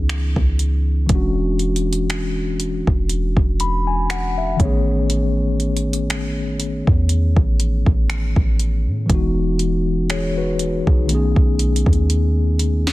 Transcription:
Already playing: C#2 E3 B3 C#4 D#4 G#4
0.09 finger snap, closed hi-hat
0.36 C#2, kick
0.59 closed hi-hat
1.06 E1 E3 G#3, kick, closed hi-hat
1.11 C#4 D4
1.15 F#4
1.59 closed hi-hat
1.76 closed hi-hat
1.93 closed hi-hat
2.10 finger snap, closed hi-hat
2.60 closed hi-hat
2.87 E1, kick
3.09 closed hi-hat
3.37 E1, kick
3.60 B5, closed hi-hat
3.87 G#5
4.10 F#5, finger snap, closed hi-hat
4.38 E5
4.57 A1 D#3 A3, kick, closed hi-hat
4.61 B3 C#4 C#5
4.65 G#4
5.10 closed hi-hat
5.60 closed hi-hat
5.77 closed hi-hat
5.93 closed hi-hat
6.10 finger snap, closed hi-hat
6.60 closed hi-hat
6.87 E2, kick
7.09 closed hi-hat
7.37 A1, kick
7.60 closed hi-hat
7.86 A1, kick
8.10 finger snap, closed hi-hat
8.36 A1, kick
8.59 closed hi-hat
8.87 A2
9.06 E1 E3 G#3, kick, closed hi-hat
9.10 B3 D#4
9.15 F#4
9.59 closed hi-hat
10.10 G#4 C#5, finger snap, closed hi-hat
10.37 F#4 B4
10.59 closed hi-hat
10.87 B1 D#4 G#4, kick
11.06 D#3 A3, closed hi-hat
11.10 B3 C#4
11.15 G#4
11.36 B1, kick
11.59 closed hi-hat
11.76 closed hi-hat
11.86 D#2, kick
11.93 closed hi-hat
12.10 closed hi-hat
12.59 closed hi-hat
12.87 snare

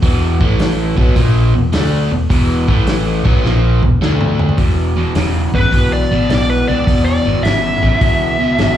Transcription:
0.03 E1 E2 B2 E3, kick, open hi-hat
0.41 A1 A2 E3 A3, kick
0.59 snare, open hi-hat
0.97 B1 B2 F#3 B3, kick
1.16 A#1 A#2 F3 A#3, kick, open hi-hat
1.54 E1 E2 B2
1.73 D2 D3 A3 D4, snare, open hi-hat
2.12 E1 E2 B2
2.30 E1 E2 B2 E3, kick, open hi-hat
2.68 A1 A2 E3 A3, kick
2.87 snare, open hi-hat
3.25 B1 B2 F#3 B3, kick
3.44 A#1 A#2 F3 A#3, snare
3.83 E1 E2 B2, kick
4.02 D2 D3 A3 D4, snare
4.21 mid tom
4.39 floor tom
4.49 floor tom
4.58 E1 E2 B2, kick, open hi-hat
4.96 E2 B2
5.15 E1 E2 C#3, snare, open hi-hat
5.54 G#1 E2 C#3 B4, kick
5.72 B1 E2 B2, kick, open hi-hat
5.93 D5
6.11 A1 E2 B2
6.30 B1 E2 B2 D5, snare, open hi-hat
6.50 B4
6.68 C#2 E2 B2 D5
6.87 E1 E2 B2, kick, open hi-hat
7.05 D5
7.24 G#1 E2 B2
7.43 G#1 E2 C#3 E5, snare, open hi-hat
7.81 A1 E2 C#3, kick
8.00 C#2 E2 B2, kick, open hi-hat
8.40 E2 B2
8.58 G#1 E2 B2, snare, open hi-hat

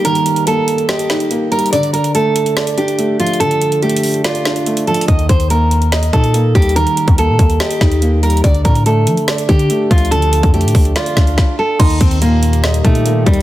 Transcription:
Already playing: D#3 G3 A#3 D#4 D#5
0.05 D#3 A#4, closed hi-hat
0.15 closed hi-hat
0.26 closed hi-hat
0.36 closed hi-hat
0.47 A#3 A4, closed hi-hat
0.68 closed hi-hat
0.78 closed hi-hat
0.89 G4 D#5, snare, closed hi-hat
0.99 closed hi-hat
1.10 D#4, snare, closed hi-hat
1.20 closed hi-hat
1.31 A#3, closed hi-hat
1.52 G3 A#4, closed hi-hat
1.59 closed hi-hat
1.66 closed hi-hat
1.72 D3 D5, closed hi-hat
1.83 closed hi-hat
1.93 A#4, closed hi-hat
2.04 closed hi-hat
2.15 A3 A4, closed hi-hat
2.36 closed hi-hat
2.46 closed hi-hat
2.56 D5, snare, closed hi-hat
2.67 closed hi-hat
2.78 D4 G4, closed hi-hat
2.88 closed hi-hat
2.99 A3, closed hi-hat
3.20 F3 F4, closed hi-hat
3.27 closed hi-hat
3.34 closed hi-hat
3.40 D3 A4, closed hi-hat
3.51 closed hi-hat
3.62 closed hi-hat
3.72 closed hi-hat
3.82 A3 G4, closed hi-hat
3.89 closed hi-hat
3.97 closed hi-hat
4.03 open hi-hat
4.14 closed hi-hat
4.24 F4 D5, snare, closed hi-hat
4.35 closed hi-hat
4.45 D4, snare, closed hi-hat
4.56 closed hi-hat
4.66 A3, closed hi-hat
4.77 closed hi-hat
4.87 F3 A4, closed hi-hat
4.94 closed hi-hat
5.01 closed hi-hat
5.08 D#2 D#3 D#5, kick, closed hi-hat
5.19 closed hi-hat
5.29 D#2 C5, kick, closed hi-hat
5.40 closed hi-hat
5.50 A#3 A#4, closed hi-hat
5.71 closed hi-hat
5.82 closed hi-hat
5.92 D#5, snare, closed hi-hat
6.03 closed hi-hat
6.13 A#2 D#4 A4, kick, closed hi-hat
6.24 closed hi-hat
6.34 A#3, closed hi-hat
6.55 D#2 G3 G4, kick, closed hi-hat
6.62 closed hi-hat
6.69 closed hi-hat
6.76 D#3 A#4, closed hi-hat
6.87 closed hi-hat
6.97 closed hi-hat
7.08 D#2, kick, closed hi-hat
7.18 A#3 A4, closed hi-hat
7.29 A#2
7.39 D#2, kick, closed hi-hat
7.50 closed hi-hat
7.60 G4 D#5, snare, closed hi-hat
7.71 closed hi-hat
7.81 D#2 D#4, kick, snare, closed hi-hat
7.92 closed hi-hat
8.02 A#3, closed hi-hat
8.23 G3 A#4, closed hi-hat
8.30 closed hi-hat
8.37 closed hi-hat
8.44 D2 D3 D5, kick, closed hi-hat
8.54 closed hi-hat
8.65 A2 A#4, kick, closed hi-hat
8.75 closed hi-hat
8.86 A3 A4, closed hi-hat
9.07 F3, closed hi-hat
9.17 closed hi-hat
9.28 D5, snare, closed hi-hat
9.38 closed hi-hat
9.49 D3 D4 G4, kick, closed hi-hat
9.59 closed hi-hat
9.70 A3, closed hi-hat
9.91 D2 F3 F4, kick, closed hi-hat
9.98 closed hi-hat
10.05 closed hi-hat
10.11 D3 A4, closed hi-hat
10.22 closed hi-hat
10.33 closed hi-hat
10.43 F2, kick, closed hi-hat
10.54 A3 G4, closed hi-hat
10.61 A2, closed hi-hat
10.68 closed hi-hat
10.75 D2, kick, open hi-hat
10.85 closed hi-hat
10.96 F4 D5, snare, closed hi-hat
11.06 closed hi-hat
11.17 D2 D4, kick, snare, closed hi-hat
11.27 closed hi-hat
11.38 kick, snare
11.59 A4
11.79 D#2 A#2 D#3 G3 D#4 G4 C6, kick, closed hi-hat, crash
11.90 closed hi-hat
12.01 D#2 C4, kick, closed hi-hat
12.11 closed hi-hat
12.22 A#2 A#3, closed hi-hat
12.43 closed hi-hat
12.53 closed hi-hat
12.64 D#5, snare, closed hi-hat
12.74 closed hi-hat
12.84 A#2 A3 D#4, kick, closed hi-hat
12.95 closed hi-hat
13.06 A#3, closed hi-hat
13.26 D#2 G3, kick, closed hi-hat
13.34 closed hi-hat

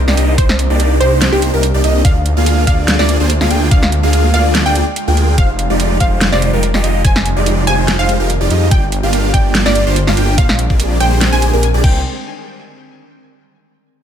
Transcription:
Already playing: A#3 C4 D4 D#4
0.08 C2 A#3 D4 D#4 G4 D5, snare
0.17 C2 A#3 D4 D#4 G4 D#5, closed hi-hat
0.38 C2 C5, kick, closed hi-hat
0.49 snare
0.59 closed hi-hat
0.70 C2 A#3 D4 D#4 G4 D5
0.80 closed hi-hat
1.00 C2 A#3 D4 D#4 G4 C5, closed hi-hat
1.21 snare, closed hi-hat
1.32 C2 A#3 D4 D#4 G4 C5
1.42 closed hi-hat
1.53 C2 A#3 D4 D#4 G4 A#4
1.63 closed hi-hat
1.74 C2 A#3 D4 D#4 G4 D5
1.84 C2 A#3 D4 D#4 G4 D#5, closed hi-hat
2.05 D2 D3 G#3 A#3 D4 F4 D5 F5, kick, closed hi-hat
2.26 closed hi-hat
2.37 D2 A#3 D4 F4 G#4 F5
2.46 closed hi-hat
2.67 D2 A#3 D4 D5 F5, kick, closed hi-hat
2.88 snare, closed hi-hat
2.99 D2 A#3 D4 F4 G#4 D5, snare
3.09 closed hi-hat
3.20 D2 A#3 D4 F4 G#4 C5
3.30 closed hi-hat
3.41 D2 A#3 D4 F4 G#4 F5, snare
3.50 D2 A#3 D4 F4 G#4 G5, closed hi-hat
3.71 D2 A#3 D4 D5 F5, kick, closed hi-hat
3.83 snare
3.92 closed hi-hat
4.03 D2 A#3 D4 F4 G#4 F5
4.13 closed hi-hat
4.34 D2 A#3 D4 F4 G#4 D5 F5, closed hi-hat
4.55 snare, closed hi-hat
4.66 D2 A#3 D4 F4 G#4 D5 G5
4.75 closed hi-hat
4.96 closed hi-hat
5.07 D2 A#3 D4 F4 G#4 G5
5.17 closed hi-hat
5.38 F1 D#3 G3 G#3 D#4 F4 G4 C5 F5, kick, closed hi-hat
5.59 closed hi-hat
5.70 F1 G#3 D#4 F4 G4 D5
5.80 closed hi-hat
6.00 F1 G#3 D#4 F4 G4 C5 F5, kick, closed hi-hat
6.21 snare, closed hi-hat
6.32 F1 G#3 D#4 F4 G4 C5 D5, snare
6.42 closed hi-hat
6.53 F1 G#3 D#4 F4 G4 A#4
6.63 closed hi-hat
6.74 F1 G#3 D#4 F4 G4 D5, snare
6.84 F1 G#3 D#4 F4 G4 D#5, closed hi-hat
7.04 F1 G#3 F4 G4 C5 G#5, kick, closed hi-hat
7.16 snare
7.26 closed hi-hat
7.36 F1 G#3 D#4 F4 G4 D5
7.46 closed hi-hat
7.67 F1 G#3 D#4 F4 G4 C5 G#5, closed hi-hat
7.88 snare, closed hi-hat
7.99 F1 G#3 D#4 F4 G4 C5 F5
8.09 closed hi-hat
8.20 F1 G#3 D#4 F4 G4 A#4
8.30 closed hi-hat
8.41 F1 G#3 D#4 F4 G4 D5
8.50 F2 G#3 D#4 F4 G4 D#5, closed hi-hat
8.71 G1 D3 A#3 D4 F4 D5 G5, kick, closed hi-hat
8.92 closed hi-hat
9.03 G1 A#3 D4 F4 G4 F5
9.13 closed hi-hat
9.34 G1 A#3 D4 F4 G4 D5 G5, kick, closed hi-hat
9.55 snare, closed hi-hat
9.66 G1 A#3 D4 F4 G4 D5, snare
9.75 closed hi-hat
9.87 G1 A#3 D4 F4 G4 C5
9.96 closed hi-hat
10.07 G1 A#3 D4 F4 G4 F5, snare
10.17 G1 A#3 D4 F4 G4 G5, closed hi-hat
10.38 A#1 G3 G#3 A#3 C4 C5 F5, kick, closed hi-hat
10.49 snare
10.59 closed hi-hat
10.70 A#1 A#3 D4 G4 G#4 D5, kick
10.80 closed hi-hat
11.00 A#1 A#3 D4 G4 G#4 C5 G5, closed hi-hat
11.21 snare, closed hi-hat
11.32 A#1 A#3 D4 G4 G#4 C5 G#5
11.42 closed hi-hat
11.53 A#1 A#3 D4 G4 G#4 A#4
11.63 closed hi-hat
11.74 A#1 A#3 D4 G4 G#4 D5
11.84 C2 D#3 A#3 C4 D4 D#4 G4 A#4 C5 G5, kick, crash

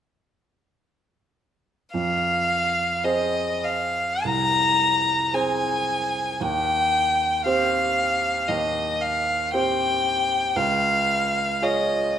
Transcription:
1.94 F2 F5
3.04 C4 G#4 C5 D#5
3.64 F5
4.25 C2 A#5
5.33 C4 G#4 C5 G#5
6.41 D#2 G5
7.46 C4 G4 C5 F5
8.48 D#2 D#5
9.01 F5
9.54 C4 G4 C5 G5
10.56 C#2 F5
11.62 F4 G#4 C#5 D#5

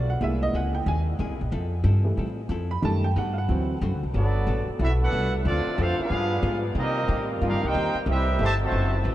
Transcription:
Already playing: B1 B3 D4 F#4
0.10 F#5
0.21 C2 C3 G#3 A#3 E4 G#4 E5
0.43 D#5
0.53 C#2 C3 A#3 E4 G#4 F#5
0.75 G5
0.86 D#2 C3 A#3 E4 G#4 G#5
1.19 E2 C3 A#3 E4 G#4
1.30 C2
1.41 A#1
1.52 F2 F3 C4 E4 A4
1.84 G2 F3 C4 E4 A4
2.04 E3 G3 A3
2.17 A2 F3 C4 E4 A4
2.49 F2 F3 C4 E4 A4
2.71 B5
2.82 F#2 B2 D#3 G3 A3 D#4 G4 A5
3.04 G5
3.16 G2 B2 A3 D#4 G4 F#5
3.34 F5
3.38 F#5
3.48 D2 D3 E3 F#3 A3 C4 F#4
3.81 F#2 D3 A3 C4 F#4
3.93 D2
4.03 C2
4.13 G1 F#3 G3 A3 B3 D4 F#4 A4 D5
4.47 A1 G3 B3 F#4 A4
4.68 muted upright bass stroke
4.79 B1 G3 B3 C4 E4 F#4 A4 E5
5.00 B3 D4 F#4 A4 B4 F#5
5.12 C2 G3 B3 F#4 A4
5.44 D2 D3 F3 A3 C4 D4 F4 A4 D5
5.66 muted upright bass stroke
5.78 F2 D3 A3 C4 D4 F4 A4 C5 F5
5.97 B3 D4 F4 G#4 B4 F5, muted upright bass stroke
6.10 G2 F3 G3 G#3 B3 F4 G#4
6.42 G#2 G3 B3 F4 G#4
6.75 C3 D#3 G3 A#3 C4 D#4 G4 A#4
6.79 C4 G4 A#4 D#5
7.08 A2 C3 A#3 D#4 G4
7.41 G2 C3 A#3 D#4 F4 G4
7.45 D4 G4 A#4 F5
7.52 D#2
7.62 C2 A#3 D#4 G4 A#4 C5 G5
7.74 D#2 C3 A#3 D#4 G4
7.94 muted upright bass stroke
8.06 C2 C3 G3 A3 C4 E4 G4 B4
8.10 C4 G4 B4 E5
8.39 G1 C3 E3 A3 C4 G4 B4
8.43 G4 C5 E5 A5
8.61 C3 F#3 A3 F#4 C5 E5 A5
8.71 F#1 D3 F#3 C4 E4 F#4 B4
9.04 A1 D3 C4 F#4 B4

